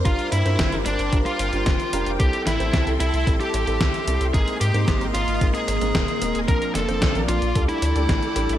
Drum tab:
HH |xxxxxxxxxxxxxxxx|xxxxxxxxxxxxxxxx|xxxxxxxxxxxxxxxx|xxxxxxxxxxxxxxxx|
SD |----o-------o---|--o-o-------o---|----o-------o---|--o-o-------o---|
BD |o---o---o---o---|o---o---o---o---|o---o---o---o---|o---o---o---o---|